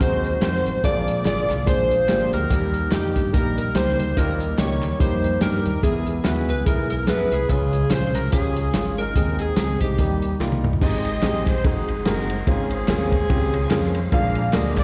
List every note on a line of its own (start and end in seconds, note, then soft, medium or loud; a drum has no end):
0.00 0.36 D#2 medium
0.00 0.82 D#3 medium
0.00 0.83 F#3 medium
0.00 2.46 G#3 medium
0.00 0.83 C4 medium
0.00 0.26 C4 medium
0.00 0.26 D#4 medium
0.00 0.42 D#4 medium
0.00 0.81 F#4 medium
0.00 0.26 F#4 medium
0.00 0.42 F#4 medium
0.00 0.26 G#4 medium
0.00 0.42 C5 loud
0.00 0.41 C5 loud
0.00 kick loud
0.00 closed hi-hat medium
0.00 tambourine medium
0.24 closed hi-hat medium
0.24 tambourine medium
0.41 0.62 F2 medium
0.41 0.68 C4 medium
0.41 0.68 D#4 medium
0.41 0.82 D#4 medium
0.41 0.68 F#4 medium
0.41 0.81 F#4 medium
0.41 0.68 A#4 medium
0.41 0.81 C5 medium
0.41 snare loud
0.41 clap loud
0.41 closed hi-hat medium
0.41 tambourine medium
0.55 snare soft
0.66 0.81 A1 medium
0.66 closed hi-hat medium
0.66 tambourine medium
0.83 1.19 A#1 loud
0.83 1.45 A#2 medium
0.83 2.48 D3 medium
0.83 2.48 F3 medium
0.83 1.10 A#3 medium
0.83 5.79 A#3 medium
0.83 1.10 D4 medium
0.83 2.49 F4 medium
0.83 1.10 F4 medium
0.83 1.26 F4 medium
0.83 1.10 G#4 medium
0.83 1.25 G#4 medium
0.83 1.23 D5 loud
0.83 1.25 D5 loud
0.83 kick loud
0.83 closed hi-hat medium
0.83 tambourine medium
1.08 closed hi-hat medium
1.08 tambourine medium
1.25 1.46 G#1 medium
1.25 1.51 A#3 medium
1.25 1.51 D4 medium
1.25 1.51 F4 medium
1.25 1.66 F4 medium
1.25 1.51 G#4 medium
1.25 1.67 G#4 medium
1.25 1.64 D5 loud
1.25 1.65 D5 medium
1.25 snare loud
1.25 clap medium
1.25 closed hi-hat loud
1.25 tambourine loud
1.49 1.64 C2 medium
1.49 snare soft
1.49 clap medium
1.49 closed hi-hat medium
1.49 tambourine soft
1.66 2.09 A#1 loud
1.66 1.92 A#3 medium
1.66 1.93 D4 medium
1.66 1.93 F4 medium
1.66 2.47 F4 medium
1.66 1.93 G#4 medium
1.66 2.47 G#4 medium
1.66 2.29 C5 loud
1.66 kick loud
1.66 closed hi-hat medium
1.66 tambourine medium
1.91 closed hi-hat medium
1.91 tambourine medium
2.08 2.29 G#1 medium
2.08 2.35 A#3 medium
2.08 2.35 D4 medium
2.08 2.35 F4 medium
2.08 2.35 G4 medium
2.08 snare loud
2.08 clap loud
2.08 closed hi-hat medium
2.08 tambourine medium
2.33 2.48 D2 medium
2.33 2.92 D#4 medium
2.33 2.92 G4 medium
2.33 2.92 A#4 loud
2.33 2.94 A#4 medium
2.33 closed hi-hat medium
2.33 tambourine medium
2.50 2.86 D#2 medium
2.50 3.12 D#3 medium
2.50 2.76 G3 medium
2.50 5.80 G3 medium
2.50 2.76 A#3 medium
2.50 2.76 D#4 medium
2.50 5.80 D#4 medium
2.50 2.76 G4 medium
2.50 kick loud
2.50 closed hi-hat medium
2.50 tambourine medium
2.74 closed hi-hat medium
2.74 tambourine medium
2.91 3.12 F2 medium
2.91 3.18 G3 medium
2.91 3.18 A#3 medium
2.91 3.72 A#3 medium
2.91 3.18 D#4 medium
2.91 3.34 D#4 medium
2.91 3.18 G4 medium
2.91 3.35 G4 medium
2.91 3.34 G4 medium
2.91 snare loud
2.91 clap medium
2.91 closed hi-hat loud
2.91 tambourine medium
3.16 3.31 G2 medium
3.16 kick medium
3.16 closed hi-hat medium
3.16 tambourine soft
3.33 3.69 A#1 medium
3.33 3.59 G3 medium
3.33 3.59 A#3 medium
3.33 3.59 D#4 medium
3.33 3.75 D#4 medium
3.33 3.59 G4 medium
3.33 3.75 G4 medium
3.33 3.57 A#4 loud
3.33 3.73 A#4 loud
3.33 kick loud
3.33 closed hi-hat medium
3.33 tambourine medium
3.58 3.74 A#4 medium
3.58 closed hi-hat medium
3.58 tambourine medium
3.75 3.96 C#2 medium
3.75 4.01 G3 medium
3.75 4.01 A#3 medium
3.75 4.01 D#4 medium
3.75 4.17 D#4 medium
3.75 4.01 G4 medium
3.75 4.17 G4 medium
3.75 4.14 C5 medium
3.75 3.99 C5 loud
3.75 snare medium
3.75 clap loud
3.75 closed hi-hat medium
3.75 tambourine medium
3.88 snare soft
3.99 4.14 D2 medium
3.99 4.18 C5 medium
3.99 closed hi-hat medium
3.99 tambourine medium
4.17 4.52 D#2 loud
4.17 4.78 D#3 medium
4.17 4.43 G3 medium
4.17 4.43 A#3 medium
4.17 4.43 D#4 medium
4.17 4.97 D#4 medium
4.17 4.43 F4 medium
4.17 4.58 G4 medium
4.17 4.56 A#4 medium
4.17 4.58 A#4 medium
4.17 kick loud
4.17 closed hi-hat medium
4.17 tambourine medium
4.40 closed hi-hat medium
4.40 tambourine medium
4.58 4.79 C#2 medium
4.58 4.84 G3 medium
4.58 4.84 A#3 medium
4.58 4.84 D#4 medium
4.58 4.84 G4 medium
4.58 4.99 G4 medium
4.58 5.38 A#4 medium
4.58 5.00 C#5 medium
4.58 5.01 C#5 medium
4.58 snare loud
4.58 clap medium
4.58 closed hi-hat loud
4.58 tambourine medium
4.83 4.97 D#2 medium
4.83 clap medium
4.83 closed hi-hat medium
4.83 tambourine soft
4.99 5.36 F2 medium
4.99 5.26 G3 medium
4.99 5.26 A#3 medium
4.99 5.26 D#4 medium
4.99 5.41 D#4 medium
4.99 5.26 G4 medium
4.99 5.41 G4 medium
4.99 5.41 C5 medium
4.99 5.39 C5 loud
4.99 kick loud
4.99 closed hi-hat medium
4.99 tambourine medium
5.24 closed hi-hat medium
5.24 tambourine medium
5.41 5.62 G2 medium
5.41 5.67 G3 medium
5.41 5.67 A#3 medium
5.41 5.67 D#4 medium
5.41 5.81 D#4 medium
5.41 5.67 G4 medium
5.41 5.81 G4 medium
5.41 5.81 A#4 medium
5.41 5.84 A#4 medium
5.41 snare loud
5.41 clap medium
5.41 closed hi-hat medium
5.41 tambourine medium
5.54 snare soft
5.65 5.81 D#2 medium
5.65 closed hi-hat medium
5.65 tambourine medium
5.83 6.18 E2 loud
5.83 6.45 E3 medium
5.83 6.09 G#3 medium
5.83 9.12 G#3 medium
5.83 7.48 B3 medium
5.83 6.09 B3 medium
5.83 6.63 B3 medium
5.83 7.48 E4 medium
5.83 6.09 E4 medium
5.83 6.24 E4 medium
5.83 6.09 G#4 medium
5.83 6.26 G#4 medium
5.83 6.23 G#4 medium
5.83 kick loud
5.83 closed hi-hat medium
5.83 tambourine medium
6.06 closed hi-hat medium
6.06 tambourine medium
6.24 6.49 D#2 medium
6.24 6.51 G#3 medium
6.24 6.51 B3 medium
6.24 6.51 E4 medium
6.24 6.66 E4 medium
6.24 6.51 F#4 medium
6.24 7.04 G#4 medium
6.24 6.31 B4 medium
6.24 6.67 B4 medium
6.24 snare loud
6.24 clap loud
6.24 closed hi-hat loud
6.24 tambourine loud
6.49 6.64 C#2 medium
6.49 6.67 B4 medium
6.49 closed hi-hat medium
6.49 tambourine soft
6.66 7.10 B1 medium
6.66 6.92 G#3 medium
6.66 6.92 B3 medium
6.66 6.92 E4 medium
6.66 7.08 E4 medium
6.66 6.92 G#4 medium
6.66 7.05 A#4 medium
6.66 6.89 A#4 loud
6.66 kick loud
6.66 closed hi-hat medium
6.66 tambourine medium
6.90 7.08 A#4 medium
6.90 closed hi-hat medium
6.90 tambourine medium
7.07 7.28 F#2 medium
7.07 7.34 G#3 medium
7.07 7.34 B3 medium
7.07 7.34 E4 medium
7.07 7.47 E4 medium
7.07 7.34 G#4 medium
7.07 7.47 G#4 medium
7.07 7.33 B4 loud
7.07 7.50 B4 medium
7.07 snare loud
7.07 clap medium
7.07 closed hi-hat medium
7.07 tambourine medium
7.32 7.47 C2 medium
7.32 7.93 G#4 medium
7.32 closed hi-hat medium
7.32 tambourine medium
7.49 7.85 C#2 loud
7.49 8.11 C#3 medium
7.49 7.75 G#3 medium
7.49 7.75 C#4 medium
7.49 9.14 C#4 medium
7.49 8.16 C#4 medium
7.49 7.75 F4 medium
7.49 9.14 F4 medium
7.49 8.16 F4 medium
7.49 7.75 G#4 medium
7.49 7.91 G#4 medium
7.49 kick medium
7.49 closed hi-hat medium
7.49 tambourine medium
7.73 closed hi-hat medium
7.73 tambourine soft
7.90 8.14 A#1 medium
7.90 8.17 G#3 medium
7.90 8.17 C#4 medium
7.90 8.17 F4 medium
7.90 8.17 G#4 medium
7.90 8.16 C5 medium
7.90 snare loud
7.90 clap loud
7.90 closed hi-hat loud
7.90 tambourine loud
8.14 8.30 C2 medium
8.14 8.31 A#4 medium
8.14 clap medium
8.14 closed hi-hat medium
8.14 tambourine soft
8.32 8.68 C#2 medium
8.32 8.58 G#3 medium
8.32 8.58 C#4 medium
8.32 9.12 C#4 medium
8.32 8.58 F4 medium
8.32 9.12 F4 medium
8.32 8.58 G4 medium
8.32 8.94 G#4 loud
8.32 8.94 G#4 medium
8.32 kick loud
8.32 closed hi-hat medium
8.32 tambourine medium
8.56 closed hi-hat medium
8.56 tambourine medium
8.73 9.09 G#1 medium
8.73 9.00 G#3 medium
8.73 9.00 C#4 medium
8.73 9.00 F4 medium
8.73 9.00 G#4 medium
8.73 snare loud
8.73 clap medium
8.73 closed hi-hat medium
8.73 tambourine medium
8.98 9.40 D#4 medium
8.98 9.37 A#4 medium
8.98 9.40 A#4 medium
8.98 closed hi-hat medium
8.98 tambourine medium
9.16 9.51 D#2 medium
9.16 9.78 D#3 medium
9.16 9.42 G#3 medium
9.16 9.99 G#3 medium
9.16 9.42 C4 medium
9.16 9.98 C4 medium
9.16 9.42 D#4 medium
9.16 10.81 D#4 medium
9.16 9.42 G#4 medium
9.16 kick loud
9.16 closed hi-hat medium
9.16 tambourine medium
9.39 9.96 C4 medium
9.39 9.82 D#4 medium
9.39 9.56 G#4 medium
9.39 9.82 G#4 medium
9.39 closed hi-hat medium
9.39 tambourine medium
9.57 9.78 C#2 medium
9.57 9.83 G#3 medium
9.57 9.83 C4 medium
9.57 9.83 D#4 medium
9.57 9.81 G#4 medium
9.57 9.83 G#4 medium
9.57 snare loud
9.57 clap loud
9.57 closed hi-hat loud
9.57 tambourine loud
9.81 9.96 C2 medium
9.81 10.61 A#3 medium
9.81 10.61 D#4 medium
9.81 10.36 G4 medium
9.81 10.40 G4 medium
9.81 kick medium
9.81 closed hi-hat medium
9.81 tambourine soft
9.98 10.34 D#2 medium
9.98 10.60 D#3 medium
9.98 10.25 G3 medium
9.98 10.82 G3 medium
9.98 10.25 A#3 medium
9.98 10.81 A#3 medium
9.98 10.25 D#4 medium
9.98 10.25 G4 medium
9.98 kick loud
9.98 closed hi-hat medium
9.98 tambourine medium
10.22 closed hi-hat medium
10.22 tambourine medium
10.40 10.75 C2 medium
10.40 10.66 G3 medium
10.40 10.66 A#3 medium
10.40 10.66 D#4 medium
10.40 10.66 F4 medium
10.40 snare medium
10.40 clap medium
10.40 tambourine loud
10.52 high tom medium
10.64 mid tom medium
10.64 tambourine medium
10.73 floor tom medium
10.81 11.17 G#1 loud
10.81 11.43 G#2 medium
10.81 11.07 G#3 medium
10.81 14.84 G#3 medium
10.81 11.07 C4 medium
10.81 11.07 D#4 medium
10.81 11.07 G4 medium
10.81 11.61 G4 medium
10.81 11.07 G#4 medium
10.81 11.47 C5 medium
10.81 12.46 D#5 medium
10.81 11.44 D#5 loud
10.81 11.64 G5 medium
10.81 14.10 C6 medium
10.81 kick loud
10.81 crash loud
10.81 tambourine medium
11.05 ride bell medium
11.05 tambourine medium
11.22 11.65 A#1 medium
11.22 11.49 G#3 medium
11.22 11.49 C4 medium
11.22 11.49 D#4 medium
11.22 11.49 G4 medium
11.22 11.49 G#4 medium
11.22 snare loud
11.22 clap loud
11.22 ride bell medium
11.22 tambourine loud
11.47 11.65 C5 loud
11.47 kick medium
11.47 snare soft
11.47 clap medium
11.47 ride bell medium
11.47 tambourine medium
11.64 12.00 G#1 loud
11.64 12.26 G#2 medium
11.64 11.90 G#3 medium
11.64 11.90 C4 medium
11.64 12.44 C4 medium
11.64 11.90 D#4 medium
11.64 12.06 D#4 medium
11.64 11.90 F#4 medium
11.64 11.90 G#4 medium
11.64 12.07 G#4 loud
11.64 12.47 F#5 medium
11.64 kick loud
11.64 ride bell medium
11.64 tambourine medium
11.88 ride bell soft
11.88 tambourine medium
12.05 12.41 F#1 medium
12.05 12.32 G#3 medium
12.05 12.32 C4 medium
12.05 12.32 D#4 medium
12.05 12.45 D#4 medium
12.05 12.32 F#4 medium
12.05 12.45 F#4 medium
12.05 12.32 A#4 medium
12.05 12.46 A#4 medium
12.05 snare loud
12.05 clap medium
12.05 ride bell medium
12.05 tambourine loud
12.19 snare soft
12.30 ride bell medium
12.30 tambourine medium
12.47 12.90 G#1 loud
12.47 13.09 G#2 medium
12.47 12.73 G#3 medium
12.47 12.73 C4 medium
12.47 12.89 C4 medium
12.47 12.73 C#4 medium
12.47 12.73 F4 medium
12.47 12.89 F4 medium
12.47 12.73 G#4 medium
12.47 12.72 G#4 medium
12.47 14.11 C5 medium
12.47 14.84 F5 medium
12.47 kick loud
12.47 ride bell medium
12.47 tambourine medium
12.71 12.88 G#4 medium
12.71 ride bell medium
12.71 tambourine medium
12.88 13.24 D#2 loud
12.88 13.14 G#3 medium
12.88 13.15 C4 medium
12.88 13.92 C4 medium
12.88 13.14 C#4 medium
12.88 13.15 F4 medium
12.88 13.92 F4 medium
12.88 13.92 G#4 loud
12.88 13.15 A#4 medium
12.88 snare loud
12.88 clap loud
12.88 ride bell medium
12.88 tambourine loud
13.12 kick medium
13.12 ride bell medium
13.12 tambourine medium
13.29 13.65 C#2 loud
13.29 13.56 G#3 medium
13.29 13.56 C4 medium
13.29 13.56 C#4 medium
13.29 13.56 F4 medium
13.29 13.56 G4 medium
13.29 kick loud
13.29 ride bell medium
13.29 tambourine medium
13.54 ride bell medium
13.54 tambourine medium
13.70 14.06 F2 loud
13.70 13.97 G#3 medium
13.70 13.97 C4 medium
13.70 13.97 C#4 medium
13.70 13.97 F4 medium
13.70 13.97 A#4 loud
13.70 snare loud
13.70 clap loud
13.70 ride bell medium
13.70 tambourine loud
13.83 snare soft
13.95 ride bell medium
13.95 tambourine medium
14.12 14.48 A#1 loud
14.12 14.74 A#2 medium
14.12 14.38 G#3 medium
14.12 14.38 A#3 medium
14.12 14.38 D4 medium
14.12 14.39 F4 medium
14.12 14.39 G#4 medium
14.12 14.84 G#4 medium
14.12 14.84 D5 medium
14.12 14.77 D5 medium
14.12 14.52 F5 loud
14.12 14.84 A#5 medium
14.12 kick loud
14.12 ride bell medium
14.12 tambourine medium
14.35 ride bell medium
14.35 tambourine medium
14.53 14.84 D2 loud
14.53 14.80 G#3 medium
14.53 14.80 A#3 medium
14.53 14.80 D4 medium
14.53 14.80 F4 medium
14.53 14.80 A#4 medium
14.53 14.78 D#5 loud
14.53 snare loud
14.53 clap loud
14.53 ride bell medium
14.53 tambourine loud
14.77 14.84 D5 loud
14.77 kick medium
14.77 snare soft
14.77 clap medium
14.77 ride bell medium
14.77 tambourine medium